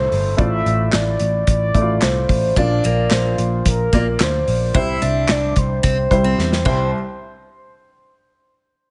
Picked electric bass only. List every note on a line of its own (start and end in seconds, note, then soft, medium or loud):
0.12 0.34 G1 medium
0.38 0.61 A1 loud
0.66 0.88 A1 medium
0.94 1.16 A1 medium
1.20 1.43 A1 medium
1.47 1.70 A1 medium
1.75 1.97 A1 medium
2.03 2.25 C2 medium
2.29 2.51 A1 medium
2.56 2.79 A#1 loud
2.85 3.07 A#1 medium
3.11 3.34 A#1 medium
3.38 3.61 A#1 loud
3.65 3.88 A#1 loud
3.93 4.15 A#1 medium
4.20 4.43 D2 medium
4.48 4.70 A#1 medium
4.75 4.97 C2 loud
5.03 5.25 C2 loud
5.30 5.52 C2 loud
5.56 5.79 C2 loud
5.84 6.06 C2 medium
6.11 6.34 C2 medium
6.38 6.65 E2 medium
6.66 6.91 C2 medium